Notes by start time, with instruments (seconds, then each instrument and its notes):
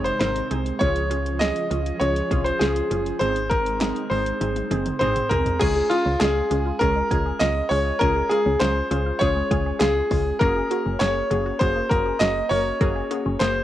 Already playing: fm bass F#1, string machine C3 G#3 D#4
0.04 grand piano C5, closed hi-hat
0.19 fm bass G#1, synth pluck C4 D#4 A#4, grand piano C5, snare, closed hi-hat
0.36 closed hi-hat
0.51 fm bass C2, synth pluck C4 D#4 G#4, closed hi-hat
0.66 closed hi-hat
0.79 fm bass C#2, string machine F3 C#4 F4 G#4, synth pluck C#4 F4 G#4, grand piano C#5, kick, closed hi-hat
0.96 closed hi-hat
1.11 synth pluck C#4 F4 G#4, closed hi-hat
1.26 closed hi-hat
1.39 synth pluck C#4 F4 G#4, grand piano D#5, snare, closed hi-hat
1.56 closed hi-hat
1.71 fm bass C#2, synth pluck C#4 F4 G#4, closed hi-hat
1.86 closed hi-hat
2.00 fm bass C#2, synth pluck C#4 F4 G#4, grand piano C#5, closed hi-hat
2.16 closed hi-hat
2.31 fm bass C2, synth pluck C#4 F4 G#4, kick, closed hi-hat
2.44 grand piano C5, closed hi-hat
2.59 fm bass C#2, synth pluck C#4 F4 G#4, grand piano G#4, snare, closed hi-hat
2.76 closed hi-hat
2.91 fm bass F#1, synth pluck C#4 F4 G#4, closed hi-hat
3.06 closed hi-hat
3.19 fm bass G#1, string machine G#3 C4 D#4, synth pluck C4 D#4 G#4, grand piano C5, closed hi-hat
3.36 closed hi-hat
3.50 synth pluck C4 D#4 G#4, grand piano A#4, kick, closed hi-hat
3.66 closed hi-hat
3.81 synth pluck C4 D#4 G#4, snare, clap, closed hi-hat
3.96 closed hi-hat
4.10 fm bass G#1, synth pluck C4 D#4 G#4, grand piano C5, open hi-hat
4.26 closed hi-hat
4.41 fm bass G#1, synth pluck C4 D#4 G#4, closed hi-hat, high tom
4.56 closed hi-hat, high tom
4.71 fm bass F#1, synth pluck C4 D#4 G#4, closed hi-hat, mid tom
4.86 closed hi-hat, mid tom
4.99 fm bass G#1, synth pluck C4 D#4 G#4, grand piano C5, closed hi-hat, mid tom
5.16 closed hi-hat, mid tom
5.29 fm bass C2, synth pluck C4 D#4 G#4, grand piano A#4, closed hi-hat, floor tom
5.46 closed hi-hat, floor tom
5.59 fm bass C#2, synth pluck G#3 C#4 F4 G#4, grand piano G#4, synth arpeggio sound G#5, kick, closed hi-hat, crash
5.76 synth arpeggio sound G#4
5.89 synth pluck G#3 C#4 F4 G#4, grand piano F4, synth arpeggio sound F4, closed hi-hat
6.06 fm bass C#2, synth arpeggio sound C#4
6.20 fm bass C#2, synth pluck G#3 C#4 F4 G#4, synth arpeggio sound G#3, grand piano G#4, snare, clap, closed hi-hat
6.51 fm bass C#2, synth pluck G#3 C#4 F4 G#4, synth arpeggio sound G#4, closed hi-hat
6.66 synth arpeggio sound F4
6.79 fm bass C#2, synth pluck G#3 C#4 F4 G#4, grand piano A#4, kick, closed hi-hat
6.96 synth arpeggio sound G#3
7.11 fm bass C#2, synth pluck G#3 C#4 F4 G#4, synth arpeggio sound G#5, kick, closed hi-hat
7.26 synth arpeggio sound G#4
7.39 fm bass C#2, synth pluck G#3 C#4 F4 G#4, synth arpeggio sound F4, grand piano D#5, snare, clap, closed hi-hat
7.69 fm bass C#2, synth arpeggio sound G#3, synth pluck G#3 C#4 F4 G#4, grand piano C#5, open hi-hat
7.99 fm bass C#2, synth pluck G#3 C#4 F4 G#4, grand piano A#4, synth arpeggio sound G#5, kick, closed hi-hat
8.16 synth arpeggio sound G#4
8.29 synth pluck G#3 C#4 F4 G#4, synth arpeggio sound F4, grand piano G#4, closed hi-hat
8.46 fm bass C#2, synth arpeggio sound C#4
8.59 fm bass C#2, synth pluck G#3 C#4 F4 G#4, synth arpeggio sound G#3, grand piano C5, snare, clap, closed hi-hat
8.91 fm bass C#2, synth pluck G#3 C#4 F4 G#4, synth arpeggio sound G#4, closed hi-hat
9.06 synth arpeggio sound F4
9.19 fm bass C#2, synth pluck G#3 C#4 F4 G#4, grand piano C#5, kick, closed hi-hat
9.36 synth arpeggio sound G#3
9.51 fm bass C#2, synth pluck G#3 C#4 F4 G#4, synth arpeggio sound G#5, kick, closed hi-hat
9.66 synth arpeggio sound G#4
9.79 fm bass C#2, synth pluck G#3 C#4 F4 G#4, synth arpeggio sound F4, grand piano G#4, snare, clap, closed hi-hat
10.11 fm bass C#2, synth pluck G#3 C#4 F4 G#4, synth arpeggio sound G#3, kick, open hi-hat
10.39 fm bass F#1, synth pluck A#3 C#4 F#4 G#4, grand piano A#4, synth arpeggio sound A#4, kick, closed hi-hat
10.56 synth arpeggio sound G#4
10.71 synth pluck A#3 C#4 F#4 G#4, synth arpeggio sound F#4, closed hi-hat
10.86 fm bass F#1, synth arpeggio sound C#4
10.99 fm bass F#1, synth pluck A#3 C#4 F#4 G#4, synth arpeggio sound A#3, grand piano C#5, snare, clap, closed hi-hat
11.31 fm bass F#1, synth pluck A#3 C#4 F#4 G#4, synth arpeggio sound G#4, closed hi-hat
11.46 synth arpeggio sound F#4
11.59 fm bass F#1, synth pluck A#3 C#4 F#4 G#4, grand piano C5, kick, closed hi-hat
11.76 synth arpeggio sound A#3
11.89 fm bass F#1, synth pluck A#3 C#4 F#4 G#4, grand piano A#4, synth arpeggio sound A#4, kick, closed hi-hat
12.06 synth arpeggio sound G#4
12.19 fm bass F#1, synth pluck A#3 C#4 F#4 G#4, synth arpeggio sound F#4, grand piano D#5, snare, clap, closed hi-hat
12.49 fm bass F#1, synth pluck A#3 C#4 F#4 A#4, synth arpeggio sound A#3, grand piano C#5, open hi-hat
12.81 fm bass F#1, synth pluck A#3 C#4 F#4 G#4, synth arpeggio sound A#4, kick, closed hi-hat
12.96 synth arpeggio sound G#4
13.11 synth pluck A#3 C#4 F#4 G#4, synth arpeggio sound F#4, closed hi-hat
13.26 fm bass F#1, synth arpeggio sound C#4
13.39 fm bass F#1, synth arpeggio sound A#3, synth pluck A#3 C#4 F#4 G#4, grand piano C5, snare, clap, closed hi-hat